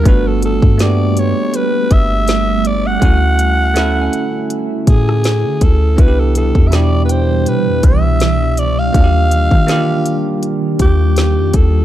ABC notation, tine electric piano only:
X:1
M:4/4
L:1/8
Q:"Swing 16ths" 1/4=81
K:Dmix
V:1 name="Tine electric piano"
[A,B,DF] z [A,_B,=B,DG]3 z3 | [A,^CEF] z [A,CEA]3 z3 | [B,DEFG] z [B,,DEG]3 z3 | [_B,D=F^FG] z [B,D=FG]3 z3 |]